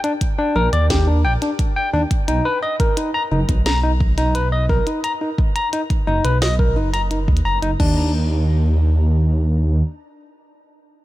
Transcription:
0.04 D4, closed hi-hat
0.21 kick, closed hi-hat
0.38 D4
0.56 A#1 A#4
0.73 D#2 D5, closed hi-hat
0.90 G4, kick, snare, closed hi-hat
1.07 D4
1.25 A#1 G5
1.42 D4, closed hi-hat
1.59 kick, closed hi-hat
1.76 G5
1.94 D#2 D4
2.11 kick, closed hi-hat
2.28 B1 D#4, closed hi-hat
2.45 B4
2.63 D#5
2.80 A#4, kick, closed hi-hat
2.97 D#4, closed hi-hat
3.14 A#5
3.31 F#1 D#4
3.49 B1, kick, closed hi-hat
3.66 A#5, snare, closed hi-hat
3.83 D#4
4.00 kick
4.18 D#4, closed hi-hat
4.35 B4, closed hi-hat
4.52 D#5
4.69 A#4, kick
4.87 D#4, closed hi-hat
5.04 A#5, closed hi-hat
5.21 D#4
5.38 kick
5.56 A#5, closed hi-hat
5.73 D#4, closed hi-hat
5.90 kick, closed hi-hat
6.07 F#1 D#4
6.25 B1 B4, closed hi-hat
6.42 D#5, snare, closed hi-hat
6.59 A#4, kick
6.76 F#1 D#4
6.94 A#5, closed hi-hat
7.11 D#4, closed hi-hat
7.28 D#2, kick
7.37 closed hi-hat
7.45 F#1 A#5
7.62 F#1 D#4, closed hi-hat
7.80 D#2 D4, kick, crash

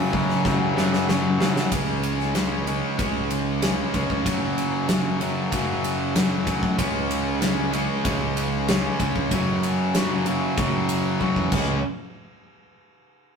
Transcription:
Already playing: F#2 C#3 F#3 C#4
0.13 F#2 C#3 F#3, kick
0.29 snare
0.44 F#2 C#3 F#3, kick, snare
0.75 F#2 C#3 F#3, snare
0.93 snare
1.08 F#2 C#3 F#3, snare
1.39 F#2 G#2 C#3 F#3, snare
1.56 snare
1.71 C#2 C#3 G#3 C#4, kick, ride
2.03 ride
2.19 snare
2.35 C#3 G#3 C#4, snare, ride
2.66 C#3 G#3 C#4, ride
2.98 C#2 C#3 G#3 C#4, kick, ride
3.31 ride
3.62 C#3 G#3 C#4, snare, ride
3.94 C#2 C#3 G#3 C#4, kick, ride
4.10 C#2, kick
4.25 F#2 C#3 F#3, kick, ride
4.58 ride
4.88 F#2 C#3 F#3, snare, ride
5.20 F#2 C#3 F#3, ride
5.51 F#2 C#3 F#3, kick, ride
5.84 ride
6.15 F#2 C#3 F#3, snare, ride
6.46 C#2 F#2 C#3 F#3, kick, ride
6.63 A2, kick
6.78 C#2 C#3 G#3 C#4, kick, ride
7.11 ride
7.41 C#3 G#3 C#4, snare, ride
7.72 C#3 G#3 C#4, ride
8.04 C#2 C#3 G#3 C#4, kick, ride
8.37 ride
8.68 C#3 G#3 C#4, snare, ride
9.00 C#2 C#3 G#3 C#4, kick, ride
9.16 C#2, kick
9.31 F#2 C#3 F#3, kick, ride
9.63 ride
9.95 F#2 C#3 F#3, snare, ride
10.26 F#2 C#3 F#3, ride
10.57 F#2 C#3 F#3, kick, ride
10.89 ride
11.21 F#2 C#3 F#3, kick
11.36 E2, kick
11.52 C#2 C#3 G#3 C#4, kick, crash

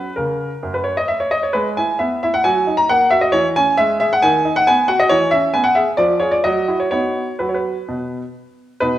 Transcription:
Already playing: B4
0.16 C#3 A#4
0.63 F#2
0.74 B4
0.84 C#5
0.97 D#5
1.08 E5
1.20 C#5
1.31 D#5
1.43 C#5
1.53 G#3 B4
1.77 E4 G#5
1.99 B3 E5
2.23 E4 E5
2.34 F#5
2.44 F#3 G#5
2.67 D#4
2.77 A#5
2.89 A#3 F#5
3.11 F#4 E5
3.21 D#5
3.32 E3 C#5
3.56 C#4 G#5
3.77 G#3 E5
4.00 G#4 E5
4.13 F#5
4.22 D#3 G#5
4.45 D#4
4.56 F#5
4.67 B3 G#5
4.88 F#4 F#5
5.00 D#5
5.09 E3 C#5
5.31 C#4 E5
5.54 B3 G#5
5.64 F#5
5.75 G#4 E5
5.97 F3 D5
6.20 F4 G#4 C#5
6.31 D5
6.44 F#3 D#5
6.68 E4 F#4
6.80 C#5
6.91 B3 D#4 F#4 C#5
7.39 F#3 B4
7.49 C#5
7.54 B4
7.88 B2
8.80 B2 D#4 B4

